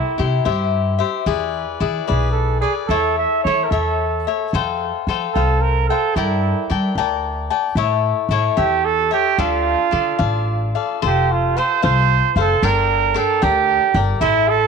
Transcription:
Already playing: E4 G4 C5 E5
0.18 C3 E4 G4 C5 E5
0.45 G2 E4 G4 C5 E5
0.99 G4 C5 E5
1.26 E2 E4 G#4 B4 D5
1.80 E3 E4 G#4 B4 D5
2.07 B1 E4 G#4 B4 D5
2.32 A4
2.61 G#4 B4 D5
2.87 E2 E4 A4 C#5 E5
3.18 E5
3.44 E3 E4 A4 C#5
3.48 E5
3.64 A#4
3.70 E2 A4 C#5 E5
3.74 E4
4.27 A4 C#5 E5
4.53 F2 A4 C5 F5 G5
5.07 F3 A4 C5 F5 G5
5.33 C2 A4 C5 F5 G5
5.61 A#4
5.88 A4 C5 F5 G5
6.16 G2 E4 A#4 D5 G5 A5
6.70 G3 A#4 D5 G5 A5
6.95 D2 A#4 D5 G5 A5
7.50 D5 G5 A5
7.75 A2 E4 A4 C#5 E5
8.29 A2 E4 A4 C#5 E5
8.57 E2 E4 G4 A4 C#5 E5
8.85 A4
9.11 G4 A4 C#5 E5
9.38 D2 D4 F4 A4 D5 F5
9.91 D3 D4 A4 D5 F5
10.18 A1 D4 A4 D5 F5
10.75 A4 D5 F5
11.02 F1 F4 A4 C5 F5
11.07 G4
11.32 F4
11.57 F4 A4 C5 F5
11.82 C2 F4 A4 C5 F5
12.36 F#1 A4 C5 F5
12.40 A4
12.63 G1 D4 A#4 D5 G5
13.14 D4 A4 A#4 D5 G5
13.42 D2 D4 G4 A#4 D5 G5
13.94 G1 A#4 D5 G5
14.21 A1 E4 A4 C5 E5
14.49 A4

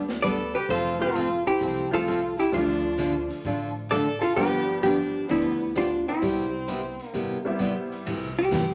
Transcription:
Already playing: D2
0.08 snare
0.22 G3 B3 D4 A4 B4 D5, closed hi-hat
0.55 G4 B4
0.69 F1 F3 A3 C4 F4 A4 C5, kick, open hi-hat
0.99 F3 A3 C4 F4 A4
1.15 F3 A3 C4 F4 A4, closed hi-hat
1.47 C4 E4 G4
1.61 C2 F3 A3 C4 F4 A4, kick, open hi-hat
1.91 F3 A3 C4 F4 A4
2.07 F3 A3 C4 F4 A4, closed hi-hat
2.38 E4 G4, open hi-hat
2.52 D2 D3 F3 A3 D4 F4 A4, kick, open hi-hat
2.98 D3 A3 D4 F4 A4, closed hi-hat
3.30 open hi-hat
3.44 A1 D3 A3 D4 F4 A4, kick, open hi-hat
3.90 D3 A3 D4 F4 A4 D5, closed hi-hat
4.21 F4 A4, open hi-hat
4.36 G1 D3 F3 G3 B3 D4 G4 B4, kick, open hi-hat
4.83 D3 F3 B3 D4 G4, closed hi-hat
5.28 D2 D3 F3 B3 D4 E4 G4, kick, open hi-hat
5.75 D3 F3 B3 D4 F4 G4, closed hi-hat
6.08 C4 E4
6.22 C2 C3 G3 B3 E4 G4, kick, open hi-hat
6.68 C3 G3 B3 E4 G4, closed hi-hat
6.99 open hi-hat
7.07 A#3 D4
7.13 G1 C3 G3 B3 E4 G4, kick, open hi-hat
7.45 G3 B3 C4 E4
7.59 C3 G3 B3 E4 G4, closed hi-hat
7.92 open hi-hat
8.06 C2 C3 E3 A3 E4 G4, kick, ride
8.39 G4
8.51 G2 C3 E3 A3 E4 G4, kick, snare, hi-hat pedal, ride

